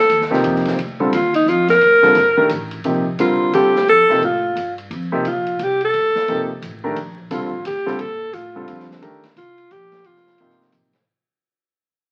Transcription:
0.00 0.31 A4 medium
0.09 0.43 D#2 medium
0.09 hi-hat pedal medium
0.09 ride medium
0.21 snare soft
0.30 0.76 C3 medium
0.30 0.76 F3 medium
0.30 0.76 A#3 medium
0.30 0.76 D#4 medium
0.30 0.76 G4 medium
0.30 snare soft
0.44 0.77 F2 medium
0.44 ride medium
0.55 snare soft
0.65 snare soft
0.65 ride soft
0.78 1.11 D2 medium
0.78 ride medium
1.00 1.12 D3 medium
1.00 1.12 G3 medium
1.00 1.12 C4 medium
1.00 1.12 F4 medium
1.00 1.12 A4 medium
1.00 kick medium
1.12 1.45 D#2 medium
1.12 1.33 F4 medium
1.12 hi-hat pedal medium
1.12 ride medium
1.34 1.50 D#4 medium
1.34 ride medium
1.46 1.80 F2 medium
1.46 1.69 F4 medium
1.46 hi-hat pedal medium
1.68 2.47 A#4 loud
1.68 snare soft
1.68 ride soft
1.81 2.02 D2 medium
1.81 ride medium
2.02 2.15 D3 medium
2.02 2.14 G3 medium
2.02 2.15 C4 medium
2.02 2.15 F4 medium
2.02 2.15 A4 medium
2.02 muted upright bass stroke soft
2.02 snare soft
2.15 2.49 G1 medium
2.15 snare soft
2.15 hi-hat pedal medium
2.15 ride medium
2.37 2.49 D#3 medium
2.37 2.49 A3 medium
2.37 2.49 D4 medium
2.37 2.49 G4 medium
2.37 2.49 A#4 medium
2.37 kick medium
2.49 2.84 A1 medium
2.49 hi-hat pedal medium
2.49 ride medium
2.71 ride soft
2.84 3.18 A#1 medium
2.84 3.04 C3 medium
2.84 3.04 F3 soft
2.84 3.04 A#3 medium
2.84 3.04 D#4 soft
2.84 3.05 G4 medium
2.84 ride medium
3.19 3.53 C2 medium
3.19 3.52 D3 medium
3.19 3.53 G3 medium
3.19 3.53 C4 medium
3.19 3.53 F4 medium
3.19 3.52 F4 medium
3.19 3.53 A#4 medium
3.19 hi-hat pedal medium
3.19 ride medium
3.53 3.87 D2 medium
3.53 3.73 D3 medium
3.53 3.73 G3 medium
3.53 3.73 C4 medium
3.53 3.74 F4 medium
3.53 3.86 G4 medium
3.53 3.74 A4 medium
3.53 hi-hat pedal medium
3.53 ride medium
3.76 snare medium
3.87 4.08 F2 medium
3.87 4.21 A4 loud
3.87 ride medium
4.09 4.21 C3 medium
4.09 4.21 F3 medium
4.09 4.21 A#3 medium
4.09 4.21 D#4 medium
4.09 4.21 G4 medium
4.09 snare soft
4.21 4.55 A2 medium
4.21 4.75 F4 medium
4.21 ride medium
4.55 4.89 G2 medium
4.55 hi-hat pedal medium
4.55 ride medium
4.78 ride soft
4.91 5.24 F2 medium
4.91 ride medium
5.12 5.24 C3 medium
5.12 5.24 F3 medium
5.12 5.24 A#3 medium
5.12 5.24 D#4 medium
5.12 5.24 G4 medium
5.25 5.58 A#1 medium
5.25 5.64 F4 medium
5.25 hi-hat pedal medium
5.25 ride medium
5.46 ride soft
5.59 5.93 C2 medium
5.59 5.83 G4 medium
5.59 hi-hat pedal medium
5.59 ride medium
5.81 6.47 A4 loud
5.81 ride soft
5.94 6.14 D2 medium
5.94 ride medium
6.15 muted upright bass stroke soft
6.15 snare medium
6.28 6.61 G1 medium
6.28 6.48 C3 medium
6.28 6.48 F3 medium
6.28 6.48 A#3 medium
6.28 6.48 D#4 medium
6.28 6.48 G4 medium
6.28 ride medium
6.62 6.95 A1 medium
6.62 hi-hat pedal medium
6.62 ride medium
6.84 6.95 D#3 medium
6.84 6.95 A3 medium
6.84 6.95 D4 medium
6.84 6.96 G4 medium
6.84 6.96 A#4 medium
6.96 7.30 A#1 medium
6.96 ride medium
7.18 kick soft
7.30 7.42 C2 medium
7.30 7.50 D3 medium
7.30 7.50 G3 medium
7.30 7.50 C4 soft
7.30 7.50 F4 medium
7.30 7.64 F4 medium
7.30 7.50 A4 medium
7.30 hi-hat pedal medium
7.30 ride medium
7.42 7.52 A#1 medium
7.53 7.64 A1 medium
7.65 7.98 D2 medium
7.65 8.02 G4 medium
7.65 hi-hat pedal medium
7.65 ride medium
7.86 7.98 D3 medium
7.86 7.98 G3 medium
7.86 7.98 C4 medium
7.86 7.98 F4 medium
7.86 7.98 A4 medium
7.86 snare soft
7.99 8.33 A#2 medium
7.99 8.35 A4 loud
7.99 ride medium
8.33 8.67 A2 medium
8.33 8.89 F4 medium
8.33 hi-hat pedal medium
8.33 ride medium
8.55 9.00 D3 medium
8.55 9.00 G3 medium
8.55 9.00 C4 medium
8.55 9.00 F4 medium
8.55 9.00 A4 medium
8.68 9.01 F2 medium
8.68 ride medium
8.80 snare soft
8.91 snare soft
9.02 9.36 D2 medium
9.02 9.21 D#3 medium
9.02 9.22 A3 medium
9.02 9.21 D4 medium
9.02 9.22 G4 medium
9.02 9.21 A#4 medium
9.02 ride medium
9.23 snare soft
9.23 ride soft
9.36 9.70 C2 medium
9.36 9.73 F4 medium
9.36 hi-hat pedal medium
9.36 ride medium
9.58 ride soft
9.71 10.04 A#1 medium
9.71 10.07 G4 loud
9.71 hi-hat pedal medium
9.71 ride medium
9.92 snare soft
9.92 ride soft
10.04 10.38 F1 medium
10.04 10.74 F4 medium
10.04 ride medium
10.16 snare soft
10.27 snare soft
10.38 10.72 G1 medium
10.38 10.91 C3 medium
10.38 10.91 F3 medium
10.38 10.91 A#3 medium
10.38 10.91 D#4 medium
10.38 10.91 G4 medium
10.38 ride medium
10.50 snare soft
10.61 snare soft
10.72 11.06 A1 medium
10.72 hi-hat pedal medium
10.72 ride medium
10.93 snare soft
10.93 ride soft

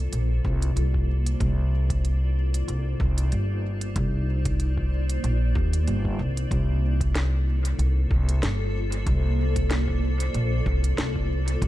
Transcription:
0.00 0.10 C2 medium
0.00 6.50 A#3 medium
0.00 6.51 F4 medium
0.00 3.25 A4 medium
0.00 6.51 C5 medium
0.00 6.51 D5 medium
0.12 0.41 A#1 medium
0.12 closed hi-hat soft
0.44 0.73 C2 medium
0.44 kick loud
0.62 closed hi-hat soft
0.76 1.38 C2 medium
0.76 closed hi-hat soft
0.94 kick medium
1.26 closed hi-hat soft
1.40 2.65 C2 medium
1.40 kick loud
1.40 closed hi-hat soft
1.74 6.51 D#4 medium
1.90 kick loud
1.90 closed hi-hat soft
2.05 closed hi-hat soft
2.54 closed hi-hat soft
2.68 2.97 C2 medium
2.68 closed hi-hat soft
3.00 3.29 C2 medium
3.00 kick loud
3.18 closed hi-hat soft
3.32 3.93 G1 medium
3.32 closed hi-hat soft
3.81 closed hi-hat soft
3.96 5.21 C2 medium
3.96 kick loud
3.96 closed hi-hat soft
4.45 kick loud
4.45 closed hi-hat soft
4.60 closed hi-hat soft
4.77 kick medium
5.10 closed hi-hat soft
5.24 5.52 A#1 medium
5.24 closed hi-hat soft
5.55 5.84 D#2 medium
5.55 kick loud
5.73 closed hi-hat soft
5.87 6.16 G1 medium
5.87 closed hi-hat soft
6.05 kick medium
6.19 6.48 C2 medium
6.37 closed hi-hat soft
6.51 7.76 C2 medium
6.51 11.68 A#3 medium
6.51 kick loud
6.51 closed hi-hat soft
6.59 11.68 A4 medium
6.66 11.68 F4 medium
6.66 11.68 C5 medium
7.01 kick medium
7.01 closed hi-hat soft
7.15 snare medium
7.15 closed hi-hat soft
7.46 11.68 D5 medium
7.65 closed hi-hat soft
7.79 8.07 C2 medium
7.79 closed hi-hat soft
8.11 8.39 C2 medium
8.11 kick loud
8.29 closed hi-hat soft
8.42 9.04 G1 medium
8.42 snare medium
8.42 closed hi-hat soft
8.92 closed hi-hat soft
9.06 10.31 C2 medium
9.06 kick loud
9.06 closed hi-hat soft
9.56 kick medium
9.56 closed hi-hat soft
9.71 snare medium
9.71 closed hi-hat soft
9.88 kick medium
10.20 closed hi-hat soft
10.34 10.63 A#1 medium
10.34 closed hi-hat soft
10.66 10.95 C2 medium
10.66 kick loud
10.84 closed hi-hat soft
10.98 11.59 C2 medium
10.98 snare medium
10.98 closed hi-hat soft
11.16 kick medium
11.48 closed hi-hat soft
11.62 11.68 C2 medium
11.62 kick loud
11.62 closed hi-hat soft

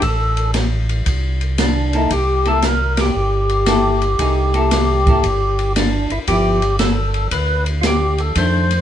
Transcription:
0.02 1.02 A1 medium
0.02 0.51 A4 medium
0.02 kick soft
0.02 ride medium
0.37 ride soft
0.54 snare medium
0.54 hi-hat pedal soft
0.54 ride medium
0.89 ride soft
1.06 2.07 C2 medium
1.06 kick soft
1.06 ride medium
1.41 ride soft
1.58 1.96 D4 medium
1.58 snare medium
1.58 hi-hat pedal medium
1.58 ride medium
1.93 2.09 A#3 medium
1.93 2.13 D#4 medium
1.93 2.10 E4 medium
1.93 2.10 A4 medium
1.93 ride soft
2.10 3.11 C2 medium
2.10 2.48 G4 medium
2.10 kick soft
2.10 ride medium
2.45 2.61 A#3 medium
2.45 2.62 E4 medium
2.45 2.62 A4 medium
2.45 2.65 A4 medium
2.45 ride soft
2.62 2.99 A#4 medium
2.62 snare medium
2.62 hi-hat pedal soft
2.62 ride medium
2.97 5.73 G4 medium
2.97 snare medium
2.97 ride medium
3.15 4.15 G1 medium
3.49 ride soft
3.66 3.99 A#3 medium
3.66 3.99 E4 soft
3.66 3.99 A4 medium
3.66 snare medium
3.66 hi-hat pedal medium
3.66 ride medium
4.02 ride soft
4.19 5.19 C2 medium
4.19 4.51 A3 soft
4.19 4.51 D#4 soft
4.19 4.51 G#4 medium
4.19 kick soft
4.19 ride medium
4.54 4.99 A#3 soft
4.54 5.00 E4 soft
4.54 5.00 A4 medium
4.54 ride soft
4.71 snare medium
4.71 hi-hat pedal soft
4.71 ride medium
5.06 5.22 A#3 medium
5.06 5.23 E4 medium
5.06 5.23 A4 medium
5.06 kick medium
5.06 ride soft
5.23 6.06 G1 medium
5.23 kick soft
5.23 ride medium
5.59 ride soft
5.76 6.12 D4 medium
5.76 snare medium
5.76 hi-hat pedal soft
5.76 ride medium
6.10 6.18 G1 soft
6.10 6.19 E4 medium
6.10 ride soft
6.27 7.28 G1 medium
6.27 6.59 F3 soft
6.27 6.60 B3 soft
6.27 6.60 E4 medium
6.27 6.76 G4 medium
6.27 kick soft
6.27 ride medium
6.62 ride soft
6.79 7.28 A4 medium
6.79 snare medium
6.79 hi-hat pedal soft
6.79 ride medium
7.14 ride soft
7.31 8.32 D2 medium
7.31 7.65 B4 medium
7.31 kick soft
7.31 ride medium
7.66 ride soft
7.81 7.85 F4 medium
7.81 snare medium
7.81 hi-hat pedal medium
7.81 ride medium
7.87 8.21 G4 medium
8.18 8.37 A4 medium
8.18 ride soft
8.35 8.81 F2 medium
8.35 8.67 D#3 soft
8.35 8.68 A3 soft
8.35 8.68 D4 soft
8.35 8.81 C5 medium
8.35 kick soft
8.35 ride medium
8.71 ride soft

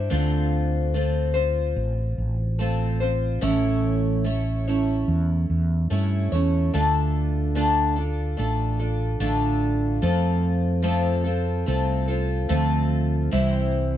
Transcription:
0.00 0.11 E4 medium
0.00 0.10 C5 medium
0.10 1.73 D2 medium
0.10 0.93 D3 medium
0.10 0.94 A3 medium
0.10 0.93 C4 medium
0.10 0.94 F4 medium
0.10 0.94 C5 medium
0.94 1.35 A3 medium
0.94 1.35 C4 medium
0.94 1.34 F4 medium
0.94 1.33 C5 medium
1.34 2.59 C4 soft
1.34 2.59 F4 soft
1.34 2.58 C5 medium
1.76 2.16 A1 medium
2.18 3.38 A1 medium
2.59 3.00 A3 medium
2.59 3.01 C4 medium
2.59 3.00 F4 medium
2.59 2.99 C5 medium
3.00 3.41 C4 soft
3.00 3.42 F4 soft
3.00 3.42 C5 medium
3.41 5.03 A1 medium
3.41 4.24 A2 medium
3.41 4.24 E3 medium
3.41 4.23 A3 medium
3.41 4.24 C#4 medium
3.41 4.25 E4 medium
3.41 4.25 C#5 medium
4.24 4.66 A3 medium
4.24 4.66 C#4 medium
4.24 4.66 E4 medium
4.24 4.66 C#5 medium
4.67 5.89 A3 soft
4.67 5.89 C#4 soft
4.67 5.90 E4 soft
4.67 5.91 C#5 medium
5.08 5.47 E2 medium
5.50 5.88 E2 medium
5.90 6.28 G2 medium
5.90 6.31 A3 medium
5.90 6.31 C#4 medium
5.90 6.32 E4 medium
5.90 6.31 C#5 medium
6.32 6.69 E2 medium
6.32 6.73 A3 soft
6.32 6.73 C#4 soft
6.32 6.73 E4 soft
6.32 6.73 C#5 medium
6.73 8.34 D2 medium
6.73 7.54 D3 medium
6.73 7.55 A3 medium
6.73 7.55 D4 medium
6.73 7.56 F4 medium
6.73 7.56 A4 medium
7.55 7.96 D3 medium
7.55 7.97 A3 medium
7.55 7.97 D4 medium
7.55 7.96 F4 medium
7.55 7.95 A4 medium
7.96 8.36 D4 soft
7.96 8.38 F4 soft
7.96 8.37 A4 medium
8.37 9.17 A1 medium
8.37 8.78 A3 medium
8.37 8.79 D4 medium
8.37 8.79 F4 medium
8.37 8.78 A4 medium
8.79 9.20 D4 soft
8.79 9.19 F4 soft
8.79 9.20 A4 medium
9.20 9.99 A1 medium
9.20 10.02 D3 medium
9.20 10.01 A3 medium
9.20 10.02 D4 medium
9.20 10.02 F4 medium
9.20 10.02 A4 medium
10.02 11.64 F2 medium
10.02 10.81 F3 medium
10.02 10.82 A3 medium
10.02 10.83 C4 medium
10.02 10.82 F4 medium
10.02 10.83 A4 medium
10.82 11.25 F3 medium
10.82 11.25 A3 medium
10.82 11.25 C4 medium
10.82 11.24 F4 medium
10.82 11.23 A4 medium
11.24 11.66 C4 soft
11.24 11.66 F4 medium
11.24 11.67 A4 soft
11.66 12.46 C2 medium
11.66 12.08 A3 medium
11.66 12.08 C4 medium
11.66 12.08 F4 medium
11.66 12.07 A4 medium
12.08 12.48 C4 soft
12.08 12.49 F4 medium
12.08 12.49 A4 medium
12.49 13.29 D2 medium
12.49 13.32 F3 medium
12.49 13.32 A3 medium
12.49 13.31 C4 medium
12.49 13.32 F4 medium
12.49 13.32 A4 medium
13.31 13.97 C2 medium
13.31 13.97 C3 medium
13.31 13.97 E3 medium
13.31 13.97 G3 medium
13.31 13.97 C4 medium
13.31 13.97 E4 medium
13.31 13.97 C5 medium

